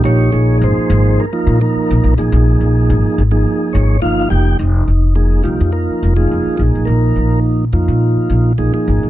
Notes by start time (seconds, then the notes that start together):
0.04 A#1 F3 A#3 D#4 G4 C#5
0.32 A#1 F3 A#3 D#4 G#4
0.61 G#1 C5
0.77 muted upright bass stroke
0.90 G#1
1.20 A#4
1.33 F3 A#3 D#4 F4
1.47 A#2
1.61 F3 A#3 D#4 A#4
1.75 muted upright bass stroke
1.91 A#1
2.04 A#1
2.18 A#1 F3 A#3 D#4 G#4
2.32 A#1
2.61 A#1
2.90 G#1
3.05 muted upright bass stroke
3.18 G#1
3.31 F3 A#3 D#4 G#4
3.73 G#1 C#5
4.02 G1 F3 A#3 D#4 F4 F5
4.30 F1 F3 A#3 D#4 G4 G5
4.59 F1 D#4
4.88 F1
5.15 F3 A#3 D#4 G#4
5.44 C2 F3 A#3 D#4 F4 G4
5.60 F2
5.72 F3 A#3 D#4 A#4
5.89 muted upright bass stroke
6.03 F1
6.16 F3 A#3 D#4 G#4
6.31 F1
6.46 muted upright bass stroke
6.57 A#1 F3 A#3 D#4 G#4
6.75 A#1
6.85 A#1 A#4
7.16 A#1
7.73 F2 F3 A#3 D#4 F4
7.88 A#2
8.17 muted upright bass stroke
8.29 A#1
8.58 A#1 F3 A#3 D#4 G#4
8.74 F3 A#3 D#4 G#4, muted upright bass stroke
8.88 G#1
9.03 A#1